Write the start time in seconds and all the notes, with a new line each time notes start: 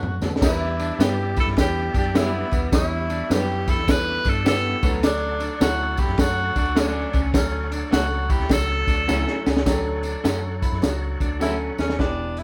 Already playing: A3 D4 F#4 C#5
0.03 F#2, mid tom
0.21 D3 F#3 B3 D4 A4, snare, floor tom, tambourine
0.36 snare
0.41 E2 G3 B3 D4 E4 G4 A#4 D5 E5, kick, snare, crash, tambourine
0.48 B4
0.79 D4, ride, tambourine
0.99 G2 G3 B3 D4 E4 G4 B4, snare, ride, tambourine
1.37 E4 A4, kick, ride, tambourine
1.46 G2, snare, ride
1.57 E2 G3 B3 D4 E4 G4 B4, kick, snare, ride, tambourine
1.94 F#2 D4, kick, ride, tambourine
1.99 G4
2.04 ride
2.14 G3 B3 D4 E4 G4 B4, snare, ride, tambourine
2.51 D#2 B3, kick, ride, tambourine
2.72 E2 F#3 B3 D4 E4 C#5, kick, snare, ride, tambourine
2.78 G3
3.10 D4, ride, tambourine
3.29 F#2 F#3 G3 B3 D4 E4 G4 B4, snare, ride, tambourine
3.33 G4
3.67 E4 A4, kick, ride, tambourine
3.78 E2, snare, ride
3.88 G3 B3 D4 E4 A4 B4, kick, snare, ride, tambourine
4.25 G2 D4, kick, ride, tambourine
4.29 A4
4.35 ride
4.45 G3 B3 D4 E4 G4 A4, snare, ride, tambourine
4.83 D2 E3 A3 B3 D4 A4 C#5 F#5, kick, ride, tambourine
4.89 F#3
5.03 D4, snare, ride, tambourine
5.40 D4, ride, tambourine
5.60 D2 F#3 A3 C#4 D4 E4 F#4 A4, snare, ride, tambourine
5.97 E4 G4, kick, ride, tambourine
6.08 F#2, snare, ride
6.18 F#2 F#3 A3 C#4 D4 F#4 A4, kick, snare, ride, tambourine
6.55 D2 D4 F#4, kick, ride, tambourine
6.65 ride
6.75 F#3 A3 C#4 D4 F#4 A4 C#5, snare, ride, tambourine
7.13 C#2 C#4, kick, ride, tambourine
7.34 D2 F#3 A3 C#4 D4 A4, kick, snare, ride, tambourine
7.72 D4, ride, tambourine
7.91 C#2 F#3 A3 C#4 D4 F#4 A4, snare, ride, tambourine
8.30 E4 G4, kick, ride, tambourine
8.40 D2, snare, ride
8.49 C#2 F#3 A3 C#4 D4 F#4 A4, kick, snare, ride, tambourine
8.87 D2 D4, kick, ride, tambourine
9.07 C#2 F#3 A3 C#4 D4 E4 F#4 A4, snare, tambourine
9.27 snare
9.46 C#2 C#4, snare, tambourine
9.57 snare
9.66 D2 F#3 C#4 D4 G4 A4 C#5 F#5, kick, snare, closed hi-hat, tambourine
9.73 A4
10.03 D4, closed hi-hat, tambourine
10.24 F#2 F#3 A3 C#4 D4 F#4 A4, snare, closed hi-hat, tambourine
10.62 E4, kick, closed hi-hat, tambourine
10.72 F#2, snare
10.82 C#2 F#3 C#4 D4 F4, snare, closed hi-hat, tambourine
10.89 F#4
11.20 D2 D4, kick, closed hi-hat, tambourine
11.40 F#3 A3 C#4 D4 E4 F#4 A4, snare, tambourine
11.78 D#2 C#4, snare, tambourine
11.90 snare
11.98 E1 E3 B3 D4 G4, kick, snare, crash
12.37 E4, closed hi-hat